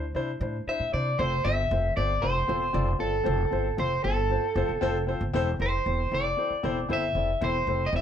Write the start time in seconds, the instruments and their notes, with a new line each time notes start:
Already playing: upright bass D2, clean electric guitar C5
0.15 upright bass C3, grand piano D4 E4 C5
0.40 upright bass A2, grand piano D4 E4 C5
0.67 grand piano D4 E4 C5, clean electric guitar E5, muted upright bass stroke
0.80 upright bass A#2
0.92 upright bass C3, grand piano D4 E4 C5, clean electric guitar D5
1.19 upright bass F1, grand piano C4 F4 A4 C5, clean electric guitar C5
1.45 upright bass G1, grand piano C4 F4 A4 C5, clean electric guitar E5
1.71 upright bass F1, grand piano C4 F4 A4 C5
1.96 upright bass G1, grand piano C4 F4 A4 C5, clean electric guitar D5
2.22 upright bass F1, grand piano C4 F4 A4 C5, clean electric guitar C5
2.48 upright bass E1, grand piano C4 F4 A4 C5
2.73 upright bass F1, grand piano C4 F4 A4 D5
2.99 upright bass G1, grand piano C4 F4 A4 D5, clean electric guitar A4
3.24 upright bass F1, grand piano C4 F4 A4 C5
3.51 upright bass G1, grand piano C4 F4 A4 C5
3.77 upright bass F1, grand piano C4 F4 A4 C5, clean electric guitar C5
4.04 upright bass G1, grand piano C4 F4 A4 C5, clean electric guitar A4
4.30 grand piano C4 F4 A4 C5
4.56 upright bass F1, grand piano C4 F4 A4 C5
4.69 upright bass E1
4.81 upright bass F1, grand piano C4 F4 A4 C5
5.07 grand piano C4 F4 A4 C5
5.21 upright bass G1
5.33 upright bass E1, grand piano C4 E4 A4 C5
5.59 upright bass F1, grand piano C4 E4 A4 C5, clean electric guitar C5
5.86 upright bass E1, grand piano C4 E4 A4 C5
6.12 upright bass F1, grand piano C4 E4 A4 C5, clean electric guitar D5
6.37 grand piano C4 E4 A4 C5
6.50 muted upright bass stroke
6.63 upright bass E1, grand piano C4 E4 A4 C5
6.89 upright bass G1, grand piano C4 E4 A4 C5
6.93 clean electric guitar E5
7.15 upright bass F1, grand piano C4 E4 A4 D5
7.41 upright bass E1, grand piano C4 E4 A4 C5, clean electric guitar C5
7.67 upright bass F1, grand piano C4 E4 A4 C5
7.86 clean electric guitar D#5
7.92 upright bass E1, grand piano C4 E4 A4 D5, clean electric guitar E5